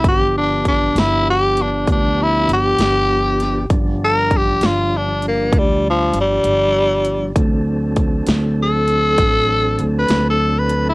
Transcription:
<<
  \new Staff \with { instrumentName = "Tenor saxophone" } { \time 12/8 \key g \mixolydian \tempo 4. = 66 g'8 d'8 d'8 e'8 g'8 d'8 d'8 e'8 g'2 | r8 bes'8 g'8 f'8 d'8 bes8 g8 f8 g2 | r2 a'2~ a'16 b'8 a'8 b'8 e'16 | }
  \new Staff \with { instrumentName = "Tonewheel organ" } { \time 12/8 \key g \mixolydian <f b d' g'>1. | <f g d'>1. | <fis c' d' a'>1. | }
  \new Staff \with { instrumentName = "Upright bass" } { \clef bass \time 12/8 \key g \mixolydian g,,4. g,,4. d,4 g,,8 g,,4. | g,,4. g,,4. d,4 g,,8 g,,4. | d,4. d,4. a,,4 d,8 d,4. | }
  \new DrumStaff \with { instrumentName = "Drums" } \drummode { \time 12/8 <hh bd>4 <hh bd>8 <hh sn>4 hh8 <hh bd>4 hh8 <hh sn>4 <hh sn>8 | <hh bd>4 <hh bd>8 <hh sn>4 hh8 <hh bd>4 hh8 hh4 hh8 | <hh bd>4 <hh bd>8 <hh sn>4 hh8 <hh bd>4 hh8 <hh sn>4 hh8 | }
>>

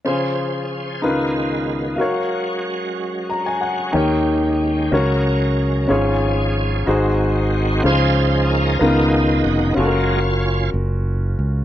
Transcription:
<<
  \new Staff \with { instrumentName = "Grand piano" } { \time 6/8 \key des \major \tempo 4. = 62 <des' f' aes' c''>4. <ees' f' bes' ces''>4. | <ges' bes' des'' f''>2. | <ees' g' bes' des''>4. <des' ges' bes' des''>4. | <des' f' aes' des''>4. <ees' ges' aes' c''>4. |
<des' f' aes' c''>4. <ces' ees' f' bes'>4. | <des' f' ges' a' bes'>2. | }
  \new Staff \with { instrumentName = "Grand piano" } { \clef bass \time 6/8 \key des \major des4. des4. | r2 bes''16 aes''16 ges''8 | ees4. des4. | aes,4. aes,4. |
des4. des4. | r2. | }
  \new Staff \with { instrumentName = "Tonewheel organ" } { \time 6/8 \key des \major << { <f aes'>4. <des, ees f'>4. | <ges ges'>2. | <ees g'>4. <ges bes'>4. | <f aes'>4. <ees ges'>4. |
c''4 bes'4 r8 ges'8 | f'4. r4. | } \\ { des'4. ces'4. | des'2.~ | des'4. des'4.~ | des'4. c'4. |
<f' aes'>4 <ees' f'>4. r8 | <bes des'>4. r4. | } >> }
  \new Staff \with { instrumentName = "Tonewheel organ" } { \clef bass \time 6/8 \key des \major c''4. aes4.~ | aes2.~ | aes2. | aes2. |
<f des' ees'>4. <ees aes ces' ees'>4. | <ges aes>8 r2 r8 | }
  \new Staff \with { instrumentName = "Fingered electric bass" } { \clef bass \time 6/8 \key des \major r2. | r2. | ees,4. des,4. | aes,,4. aes,,4. |
des,4. des,4 f,,8 | ges,,4. ges,,4 des,8 | }
>>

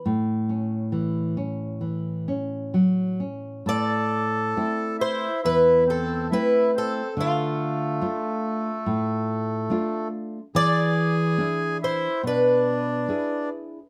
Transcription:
<<
  \new Staff \with { instrumentName = "Twelve-string acoustic guitar" } { \time 4/4 \key a \major \tempo 4 = 70 r1 | \key a \minor d''4. c''8 b'8 a'8 b'8 a'8 | f'2.~ f'8 r8 | d''4. c''8 b'4. r8 | }
  \new Staff \with { instrumentName = "Accordion" } { \time 4/4 \key a \major r1 | \key a \minor a'4. e'8 e'8 c'8 e'8 c'8 | a2.~ a8 r8 | gis'4. e'8 d'4. r8 | }
  \new Staff \with { instrumentName = "Nylon-string guitar" } { \time 4/4 \key a \major a,8 cis'8 e8 cis'8 e8 cis'8 fis8 cis'8 | \key a \minor a,4 <a c' e'>4 e,4 <a c' e'>4 | d4 <a d' f'>4 a,4 <a d' f'>4 | e4 <d' e' gis'>4 b,4 <d' e' gis'>4 | }
>>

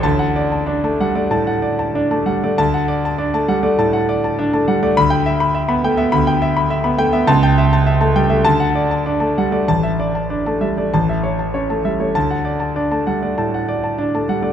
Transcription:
<<
  \new Staff \with { instrumentName = "Grand piano" } { \time 4/4 \key d \major \tempo 4 = 99 << { a''8 r2. r8 | a''8 r2. r8 | b''8 r2. r8 | a''8 r4. a''8 r4. |
a''8 r4. a''8 r4. | a''8 r2. r8 | } \\ { r16 fis''16 d''16 a''16 d''16 a''16 fis''16 d''16 a''16 fis''16 d''16 a''16 d''16 a''16 fis''16 d''16 | r16 fis''16 d''16 a''16 d''16 a''16 fis''16 d''16 a''16 fis''16 d''16 a''16 d''16 a''16 fis''16 d''16 | r16 g''16 e''16 b''16 e''16 b''16 g''16 e''16 b''16 g''16 e''16 b''16 e''16 b''16 g''16 e''16 | r16 g''16 e''16 a''16 e''16 a''16 g''16 e''16 r16 fis''16 d''16 a''16 d''16 a''16 fis''16 d''16 |
r16 e''16 d''16 a''16 d''16 a''16 e''16 d''16 r16 e''16 cis''16 a''16 cis''16 a''16 e''16 cis''16 | r16 fis''16 d''16 a''16 d''16 a''16 fis''16 d''16 a''16 fis''16 d''16 a''16 d''16 a''16 fis''16 d''16 | } >> }
  \new Staff \with { instrumentName = "Grand piano" } { \time 4/4 \key d \major d,4 d'16 a16 g16 a16 a,8 r8 d'16 a16 g16 a16 | d,4 d'16 a16 g16 a16 a,8 r8 d'16 a16 g16 a16 | d,4~ d,16 b16 a16 b16 d,4~ d,16 b16 a16 b16 | cis,4~ cis,16 a16 g16 a16 d,4 d'16 a16 g16 a16 |
a,,4 d'16 a16 g16 a16 a,,4 cis'16 a16 g16 a16 | d,4 d'16 a16 g16 a16 a,8 r8 d'16 a16 g16 a16 | }
>>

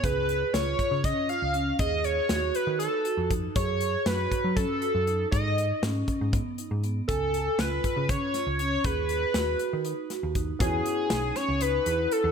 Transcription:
<<
  \new Staff \with { instrumentName = "Analog synth lead" } { \time 7/8 \key cis \minor \tempo 4 = 119 b'4 cis''4 dis''8 eis''4 | dis''8 cis''4 b'8 a'4 r8 | cis''4 b'4 a'4. | dis''4 r2 r8 |
a'4 b'4 cis''4 cis''8 | b'2~ b'8 r4 | gis'4. cis''8 b'4 a'8 | }
  \new Staff \with { instrumentName = "Grand piano" } { \time 7/8 \key cis \minor r2. r8 | r2. r8 | r2. r8 | r2. r8 |
r2. r8 | r2. r8 | <b cis' fis' gis'>2.~ <b cis' fis' gis'>8 | }
  \new Staff \with { instrumentName = "Vibraphone" } { \time 7/8 \key cis \minor gis'4 eis'4 cis'8 eis'8 cis'8 | gis'4 fis'4 dis'8 fis'8 dis'8 | gis'4 fis'4 cis'8 fis'8 dis'8 | dis'4 cis'4 b8 dis'8 b8 |
gis''4 eis'4 cis'8 eis'8 cis'8 | gis'4 fis'4 dis'8 fis'8 dis'8 | e'4 dis'8 cis'8 dis'8 e'4 | }
  \new Staff \with { instrumentName = "Picked electric bass" } { \clef bass \time 7/8 \key cis \minor cis,4 cis,8 r16 cis8 r8 cis,8. | dis,4 dis,8 r16 dis8 r8 eis,8. | fis,4 fis,8 r16 fis8 r8 fis,8. | gis,4 gis,8 r16 gis,8 r8 gis,8. |
cis,4 cis,8 r16 cis8 r8 cis,8. | dis,4 dis,8 r16 dis8 r8 dis,8. | e,8 r8 b,,8 r16 cis,8. e,8 r16 e,16 | }
  \new DrumStaff \with { instrumentName = "Drums" } \drummode { \time 7/8 <hh bd>8 hh8 <hh sn>8 <hh bd>8 <hh bd>8 hh8 hh8 | <hh bd>8 hh8 <hh sn>8 hh8 hh8 hh8 <hh bd>8 | <hh bd>8 hh8 <hh sn>8 <hh bd>8 <hh bd>8 hh8 hh8 | <hh bd>8 hh8 <hh sn>8 <hh bd>8 <hh bd>8 hh8 hh8 |
<hh bd>8 hh8 <hh sn>8 <hh bd>8 <hh bd>8 <hh sn>8 hh8 | <hh bd>8 hh8 <hh sn>8 hh8 hh8 <hh sn>8 <hh bd>8 | <hh bd>8 hh8 <hh sn>8 <hh sn>8 hh8 hh8 hh8 | }
>>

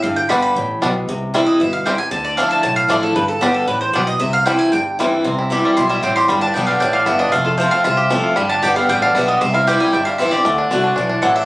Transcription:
<<
  \new Staff \with { instrumentName = "Mandolin" } { \time 4/4 \key c \major \tempo 4 = 230 f''8 g''8 b''8 b''2~ b''8 | r4. ees''8 e''8 f''8 g''8 aes''8 | a''8 d''8 f''8 a''8 a''8 f''8 d''8 a'8 | b'8 a'8 g'8 a'8 b'8 c''8 d''8 ees''8 |
e''8 f''8 g''8 aes''8 g''4 r4 | r2 c'''8 e''8 g''8 c'''8 | b''8 a''8 g''8 f''8 g''8 f''8 e''8 ees''8 | f''8 a'8 c''8 f''8 e''4. r8 |
b''8 a''8 g''8 f''8 g''8 f''8 e''8 ees''8 | e''8 f''8 g''8 aes''8 g''8 f''8 e''8 d''8~ | d''2 r4 fis''8 e''8 | }
  \new Staff \with { instrumentName = "Five-string banjo" } { \time 4/4 \key c \major r4 <g b d'>8 r4. <g b d'>8 r8 | r4 <g c' e'>8 r4. <g c' e'>8 r8 | r4 <a d'>8 r4. <a d'>8 r8 | r4 <g b d'>8 r4. <g b d'>8 r8 |
r4 <g c' e'>8 r4. <g c' e'>8 r8 | c'8 e'8 g'8 g8 e'8 g8 c'8 g'8 | g8 d'8 b8 d8 d'8 d8 b8 d'8 | a8 f'8 f8 c'8 f'8 g'8 a8 f'8 |
g8 d'8 g'8 b8 g8 d'8 b8 g8 | c'8 e'8 g'8 g8 e'8 g8 c'8 g'8 | a8 d'8 d8 d'8 d'8 d'8 a8 d'8 | }
  \new Staff \with { instrumentName = "Steel-string acoustic guitar" } { \clef bass \time 4/4 \key c \major << { r4 <d g b g'>4 r2 | r4 <e g c' e'>4 r2 | r4 <f a d' e'>4 r4 <f a d' e'>4 | r4 <d g b g'>4 r2 |
r4 <e g c' e'>4 r4 <e g c' e'>4 | r4 <e g c' e'>4 r2 | r4 <d g b g'>4 r2 | r4 <f a c' f'>4 r4 <f a c' f'>4 |
r4 <d g b g'>8 <b g'>8 r4 <d g b g'>4 | r4 <e g c' e'>4 r4 <e g c' e'>8 <c' e'>8 | r4 <d a d' fis'>4 r2 | } \\ { g,2 a,4 b,4 | c2 b,4 c4 | d2 a,2 | g,2 a,4 b,4 |
c2 g,2 | c2 b,4 a,4 | g,2 a,4 g,4 | f,2 c2 |
g,2 d2 | c2 g,2 | d2 e4 fis4 | } >> }
  \new Staff \with { instrumentName = "Upright bass" } { \clef bass \time 4/4 \key c \major g,,4 g,,4 a,,4 b,,4 | c,2 g,,2 | d,2 b,,4 a,,4 | g,,4 g,,4 a,,4 b,,4 |
c,2 g,,2 | c,2 b,,4 a,,4 | g,,4 b,,4 a,,4 g,,4 | f,,2 c,2 |
g,,4 g,,4 a,,4 b,,4 | c,2 g,,2 | d,4 c,4 b,,4 a,,4 | }
>>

